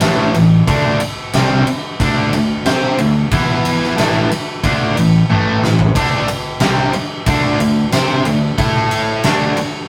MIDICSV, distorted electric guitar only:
0, 0, Header, 1, 3, 480
1, 0, Start_track
1, 0, Tempo, 658617
1, 494, Time_signature, 4, 2, 24, 8
1, 7201, End_track
2, 0, Start_track
2, 0, Title_t, "Distorted electric guitar"
2, 0, Program_c, 0, 30
2, 3, Note_on_c, 0, 45, 96
2, 7, Note_on_c, 0, 52, 96
2, 13, Note_on_c, 0, 57, 96
2, 241, Note_off_c, 0, 45, 0
2, 243, Note_off_c, 0, 52, 0
2, 247, Note_off_c, 0, 57, 0
2, 249, Note_on_c, 0, 45, 59
2, 253, Note_on_c, 0, 52, 68
2, 443, Note_off_c, 0, 45, 0
2, 446, Note_off_c, 0, 52, 0
2, 491, Note_on_c, 0, 50, 82
2, 493, Note_on_c, 0, 57, 92
2, 497, Note_on_c, 0, 62, 100
2, 726, Note_off_c, 0, 50, 0
2, 726, Note_off_c, 0, 57, 0
2, 729, Note_off_c, 0, 62, 0
2, 979, Note_on_c, 0, 48, 87
2, 983, Note_on_c, 0, 55, 85
2, 986, Note_on_c, 0, 60, 98
2, 1210, Note_off_c, 0, 48, 0
2, 1212, Note_off_c, 0, 55, 0
2, 1214, Note_off_c, 0, 60, 0
2, 1457, Note_on_c, 0, 50, 89
2, 1462, Note_on_c, 0, 57, 110
2, 1464, Note_on_c, 0, 62, 109
2, 1689, Note_off_c, 0, 50, 0
2, 1692, Note_off_c, 0, 57, 0
2, 1693, Note_off_c, 0, 62, 0
2, 1702, Note_on_c, 0, 50, 66
2, 1706, Note_on_c, 0, 57, 73
2, 1891, Note_off_c, 0, 50, 0
2, 1893, Note_off_c, 0, 57, 0
2, 1937, Note_on_c, 0, 60, 94
2, 1938, Note_on_c, 0, 67, 94
2, 1941, Note_on_c, 0, 72, 104
2, 2169, Note_off_c, 0, 60, 0
2, 2169, Note_off_c, 0, 67, 0
2, 2171, Note_off_c, 0, 72, 0
2, 2178, Note_on_c, 0, 50, 64
2, 2183, Note_on_c, 0, 57, 65
2, 2369, Note_off_c, 0, 50, 0
2, 2371, Note_off_c, 0, 57, 0
2, 2418, Note_on_c, 0, 52, 85
2, 2424, Note_on_c, 0, 59, 91
2, 2426, Note_on_c, 0, 64, 100
2, 2885, Note_off_c, 0, 52, 0
2, 2890, Note_on_c, 0, 45, 87
2, 2891, Note_off_c, 0, 59, 0
2, 2892, Note_off_c, 0, 64, 0
2, 2894, Note_on_c, 0, 52, 96
2, 2895, Note_on_c, 0, 57, 95
2, 3126, Note_off_c, 0, 45, 0
2, 3128, Note_off_c, 0, 52, 0
2, 3128, Note_off_c, 0, 57, 0
2, 3378, Note_on_c, 0, 50, 86
2, 3380, Note_on_c, 0, 57, 90
2, 3383, Note_on_c, 0, 62, 106
2, 3609, Note_off_c, 0, 50, 0
2, 3610, Note_off_c, 0, 57, 0
2, 3612, Note_off_c, 0, 62, 0
2, 3618, Note_on_c, 0, 45, 63
2, 3622, Note_on_c, 0, 52, 70
2, 3808, Note_off_c, 0, 45, 0
2, 3811, Note_off_c, 0, 52, 0
2, 3860, Note_on_c, 0, 45, 84
2, 3864, Note_on_c, 0, 52, 88
2, 3871, Note_on_c, 0, 57, 95
2, 4091, Note_off_c, 0, 45, 0
2, 4092, Note_off_c, 0, 52, 0
2, 4096, Note_off_c, 0, 57, 0
2, 4103, Note_on_c, 0, 45, 58
2, 4108, Note_on_c, 0, 52, 61
2, 4291, Note_off_c, 0, 45, 0
2, 4293, Note_off_c, 0, 52, 0
2, 4338, Note_on_c, 0, 50, 87
2, 4342, Note_on_c, 0, 57, 89
2, 4347, Note_on_c, 0, 62, 102
2, 4569, Note_off_c, 0, 50, 0
2, 4571, Note_off_c, 0, 57, 0
2, 4574, Note_off_c, 0, 62, 0
2, 4814, Note_on_c, 0, 48, 91
2, 4819, Note_on_c, 0, 55, 91
2, 4823, Note_on_c, 0, 60, 96
2, 5047, Note_off_c, 0, 48, 0
2, 5050, Note_off_c, 0, 55, 0
2, 5051, Note_off_c, 0, 60, 0
2, 5293, Note_on_c, 0, 50, 90
2, 5299, Note_on_c, 0, 57, 103
2, 5303, Note_on_c, 0, 62, 102
2, 5522, Note_off_c, 0, 50, 0
2, 5525, Note_off_c, 0, 57, 0
2, 5531, Note_off_c, 0, 62, 0
2, 5531, Note_on_c, 0, 50, 62
2, 5534, Note_on_c, 0, 57, 71
2, 5724, Note_off_c, 0, 50, 0
2, 5726, Note_off_c, 0, 57, 0
2, 5776, Note_on_c, 0, 60, 76
2, 5779, Note_on_c, 0, 67, 95
2, 5780, Note_on_c, 0, 72, 101
2, 6008, Note_off_c, 0, 60, 0
2, 6009, Note_off_c, 0, 67, 0
2, 6010, Note_off_c, 0, 72, 0
2, 6016, Note_on_c, 0, 50, 58
2, 6017, Note_on_c, 0, 57, 64
2, 6207, Note_off_c, 0, 50, 0
2, 6208, Note_off_c, 0, 57, 0
2, 6252, Note_on_c, 0, 57, 85
2, 6255, Note_on_c, 0, 64, 86
2, 6257, Note_on_c, 0, 69, 100
2, 6725, Note_off_c, 0, 57, 0
2, 6727, Note_off_c, 0, 64, 0
2, 6728, Note_off_c, 0, 69, 0
2, 6739, Note_on_c, 0, 50, 84
2, 6743, Note_on_c, 0, 57, 93
2, 6746, Note_on_c, 0, 62, 103
2, 6969, Note_off_c, 0, 50, 0
2, 6971, Note_off_c, 0, 57, 0
2, 6973, Note_off_c, 0, 62, 0
2, 7201, End_track
3, 0, Start_track
3, 0, Title_t, "Muted distorted electric guitar strokes"
3, 737, Note_on_c, 9, 29, 57
3, 809, Note_off_c, 9, 29, 0
3, 1214, Note_on_c, 9, 29, 57
3, 1287, Note_off_c, 9, 29, 0
3, 3137, Note_on_c, 9, 29, 55
3, 3210, Note_off_c, 9, 29, 0
3, 4581, Note_on_c, 9, 29, 54
3, 4654, Note_off_c, 9, 29, 0
3, 5055, Note_on_c, 9, 29, 52
3, 5128, Note_off_c, 9, 29, 0
3, 6978, Note_on_c, 9, 29, 55
3, 7051, Note_off_c, 9, 29, 0
3, 7201, End_track
0, 0, End_of_file